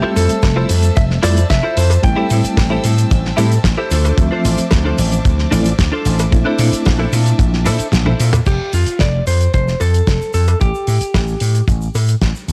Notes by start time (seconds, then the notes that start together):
Already playing: G3 A3 C4 G4 C5 E5 A5 E6
0.02 E4 F4 A4 C5
0.16 F2 A4, open hi-hat, ride, shaker
0.29 muted slap bass stroke, closed hi-hat, shaker
0.43 F1, kick, snare, closed hi-hat, ride, cowbell, shaker
0.56 E4 F4 A4 C5
0.69 F2, open hi-hat, ride, shaker
0.83 muted clean electric guitar stroke, closed hi-hat, shaker
0.96 F1 E5, kick, closed hi-hat, ride, shaker
1.10 snare
1.23 F2 G3 A3 C4 E4 F4 A4 C5 D5, open hi-hat, ride, cowbell, shaker
1.37 closed hi-hat, shaker
1.50 F1 E5, kick, snare, closed hi-hat, ride, shaker
1.63 E4 F4 A4 C5
1.77 F2 C5, open hi-hat, ride, shaker
1.90 closed hi-hat, cowbell, shaker
2.03 A1 G3 A3 C4 E4 C5 G5 E6, kick, closed hi-hat, ride, shaker
2.16 E4 G4 A4 C5
2.30 A2, open hi-hat, ride, shaker
2.44 muted slap bass stroke, closed hi-hat, shaker
2.57 A1, kick, snare, open hi-hat, ride, cowbell, shaker
2.70 E4 G4 A4 C5
2.84 A2, open hi-hat, ride, shaker
2.97 muted clean electric guitar stroke, closed hi-hat, shaker
3.11 A1, kick, closed hi-hat, ride, shaker
3.25 snare
3.37 A2 G3 A3 C4 E4 G4 A4 C5, open hi-hat, ride, cowbell, shaker
3.52 closed hi-hat, shaker
3.64 A1, kick, snare, closed hi-hat, ride, shaker
3.77 E4 G4 A4 C5
3.91 D2 D4 F4 A4 C5 D6, open hi-hat, ride, shaker
4.05 closed hi-hat, cowbell, shaker
4.17 D2 F3 A3 C4 E5, kick, closed hi-hat, ride, shaker
4.31 D4 F4 A4 C5
4.45 A1, open hi-hat, ride, shaker
4.58 muted slap bass stroke, closed hi-hat, shaker
4.71 D2, kick, snare, closed hi-hat, ride, cowbell, shaker
4.85 D4 F4 A4 C5
4.98 A1, open hi-hat, ride, shaker
5.12 muted clean electric guitar stroke, closed hi-hat, shaker
5.25 D2, kick, closed hi-hat, ride, shaker
5.38 snare
5.51 A1 F3 A3 C4 D4 E4 F4 A4 D5, open hi-hat, ride, cowbell, shaker
5.65 closed hi-hat, shaker
5.79 D2, kick, snare, closed hi-hat, ride, shaker
5.92 D4 F4 A4 C5
6.05 A1, open hi-hat, ride, shaker
6.19 closed hi-hat, cowbell, shaker
6.31 A#1 A3 C4 D4 E4 E5 A5, kick, closed hi-hat, ride, shaker
6.45 D4 E4 A4 C5
6.59 A#2, open hi-hat, ride, shaker
6.72 muted slap bass stroke, closed hi-hat, shaker
6.85 A#1, kick, snare, open hi-hat, ride, cowbell, shaker
6.99 D4 E4 A4 C5
7.13 A#2, open hi-hat, ride, shaker
7.25 muted clean electric guitar stroke, closed hi-hat, shaker
7.39 A#1, kick, closed hi-hat, ride, shaker
7.53 snare
7.66 A#2 D4 E4 A4 C5, open hi-hat, ride, cowbell, shaker
7.79 muted slap bass stroke, closed hi-hat, shaker
7.92 A#1, snare, closed hi-hat, high tom, ride, shaker
8.06 D4 E4 A4 C5, high tom
8.20 A#2, open hi-hat, ride, shaker
8.33 closed hi-hat, mid tom, cowbell, shaker
8.46 F1 G4, kick, closed hi-hat, crash, shaker
8.73 F2 F4, open hi-hat, shaker
8.86 muted slap bass stroke, closed hi-hat, shaker
8.99 F1 D5, kick, snare, closed hi-hat, cowbell, shaker
9.27 F2 C5, open hi-hat, shaker
9.41 closed hi-hat, shaker
9.54 F1 C5, kick, closed hi-hat, shaker
9.68 snare, shaker
9.80 F2 A4, open hi-hat, cowbell, shaker
9.94 closed hi-hat, shaker
10.07 F1, kick, snare, closed hi-hat, shaker
10.22 shaker
10.33 F2 A4, open hi-hat, shaker
10.47 closed hi-hat, cowbell, shaker
10.61 A1 G4, kick, closed hi-hat, shaker
10.75 shaker
10.87 A2, open hi-hat, shaker
11.01 muted slap bass stroke, closed hi-hat, shaker
11.14 A1, kick, snare, open hi-hat, cowbell, shaker
11.28 shaker
11.40 A2, open hi-hat, shaker
11.55 closed hi-hat, shaker
11.68 A1, kick, closed hi-hat, shaker
11.81 shaker
11.95 A2, open hi-hat, cowbell, shaker
12.08 closed hi-hat, shaker
12.21 A1, kick, snare, closed hi-hat, shaker
12.35 shaker
12.48 D2, open hi-hat, shaker